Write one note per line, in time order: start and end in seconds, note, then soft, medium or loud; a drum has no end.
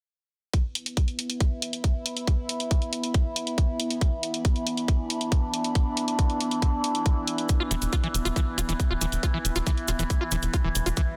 0.54 11.17 E3 medium
0.54 11.17 B3 medium
0.54 4.04 E4 medium
0.54 kick loud
0.54 closed hi-hat medium
0.70 11.17 E4 medium
0.75 closed hi-hat medium
0.86 closed hi-hat medium
0.97 kick loud
0.97 closed hi-hat medium
1.08 11.17 E5 medium
1.08 closed hi-hat soft
1.19 closed hi-hat medium
1.30 closed hi-hat medium
1.40 kick loud
1.40 closed hi-hat medium
1.46 11.17 B5 medium
1.62 closed hi-hat medium
1.73 closed hi-hat medium
1.84 kick loud
1.84 closed hi-hat medium
2.06 closed hi-hat medium
2.17 closed hi-hat medium
2.27 kick loud
2.27 closed hi-hat medium
2.49 closed hi-hat medium
2.60 closed hi-hat medium
2.71 kick loud
2.71 closed hi-hat medium
2.82 closed hi-hat soft
2.93 closed hi-hat medium
3.04 closed hi-hat medium
3.14 kick loud
3.14 closed hi-hat medium
3.36 closed hi-hat medium
3.47 closed hi-hat medium
3.58 kick loud
3.58 closed hi-hat medium
3.80 closed hi-hat medium
3.90 closed hi-hat medium
4.01 7.51 D4 medium
4.01 kick loud
4.01 closed hi-hat medium
4.23 closed hi-hat medium
4.34 closed hi-hat medium
4.45 kick loud
4.45 closed hi-hat medium
4.56 closed hi-hat soft
4.67 closed hi-hat medium
4.77 closed hi-hat soft
4.88 kick loud
4.88 closed hi-hat medium
5.10 closed hi-hat medium
5.21 closed hi-hat medium
5.32 kick loud
5.32 closed hi-hat medium
5.54 closed hi-hat medium
5.64 closed hi-hat medium
5.75 kick loud
5.75 closed hi-hat medium
5.97 closed hi-hat medium
6.08 closed hi-hat soft
6.19 kick loud
6.19 closed hi-hat medium
6.30 closed hi-hat soft
6.41 closed hi-hat medium
6.51 closed hi-hat soft
6.62 kick loud
6.62 closed hi-hat medium
6.84 closed hi-hat medium
6.95 closed hi-hat medium
7.06 kick loud
7.06 closed hi-hat medium
7.27 closed hi-hat medium
7.38 closed hi-hat soft
7.49 10.99 E4 medium
7.49 kick loud
7.49 closed hi-hat medium
7.49 cabasa soft
7.60 7.63 F4 medium
7.71 7.77 E1 medium
7.71 7.75 E3 medium
7.71 closed hi-hat medium
7.71 cabasa medium
7.82 7.88 E1 medium
7.82 closed hi-hat soft
7.82 cabasa medium
7.93 7.95 F4 medium
7.93 kick loud
7.93 closed hi-hat medium
7.93 cabasa soft
8.04 8.08 E3 medium
8.04 closed hi-hat soft
8.14 8.20 E1 medium
8.14 closed hi-hat medium
8.14 cabasa medium
8.25 8.31 E1 medium
8.25 8.28 F4 medium
8.25 closed hi-hat soft
8.25 cabasa soft
8.36 8.40 E3 medium
8.36 kick loud
8.36 closed hi-hat medium
8.36 cabasa soft
8.58 8.64 E1 medium
8.58 8.60 F4 medium
8.58 closed hi-hat medium
8.58 cabasa medium
8.69 8.75 E1 medium
8.69 8.73 E3 medium
8.69 closed hi-hat soft
8.69 cabasa medium
8.80 kick loud
8.80 closed hi-hat medium
8.80 cabasa soft
8.90 8.96 E1 medium
8.90 8.93 F4 medium
9.01 9.07 E1 medium
9.01 9.06 E3 medium
9.01 closed hi-hat medium
9.01 cabasa medium
9.12 9.18 E1 medium
9.12 closed hi-hat medium
9.12 cabasa medium
9.23 9.26 F4 medium
9.23 kick loud
9.23 closed hi-hat medium
9.23 cabasa soft
9.34 9.38 E3 medium
9.45 9.51 E1 loud
9.45 closed hi-hat medium
9.45 cabasa medium
9.56 9.62 E1 medium
9.56 9.58 F4 medium
9.56 closed hi-hat medium
9.56 cabasa soft
9.67 9.71 E3 medium
9.67 kick loud
9.67 closed hi-hat medium
9.67 cabasa soft
9.77 closed hi-hat soft
9.88 9.94 E1 medium
9.88 9.91 F4 medium
9.88 closed hi-hat medium
9.88 cabasa medium
9.99 10.05 E1 medium
9.99 10.03 E3 medium
9.99 closed hi-hat medium
9.99 cabasa soft
10.10 kick loud
10.10 closed hi-hat medium
10.10 cabasa soft
10.21 10.23 F4 medium
10.31 10.38 E1 medium
10.31 10.36 E3 medium
10.31 closed hi-hat medium
10.31 cabasa medium
10.42 10.49 E1 medium
10.42 closed hi-hat medium
10.42 cabasa medium
10.54 10.56 F4 medium
10.54 kick loud
10.54 closed hi-hat medium
10.54 cabasa soft
10.64 10.70 E1 medium
10.64 10.69 E3 medium
10.75 10.81 E1 medium
10.75 closed hi-hat medium
10.75 cabasa medium
10.86 10.92 E1 medium
10.86 10.89 F4 medium
10.86 closed hi-hat medium
10.86 cabasa soft
10.97 11.01 E3 medium
10.97 kick loud
10.97 closed hi-hat medium
10.97 riser medium
10.97 cabasa soft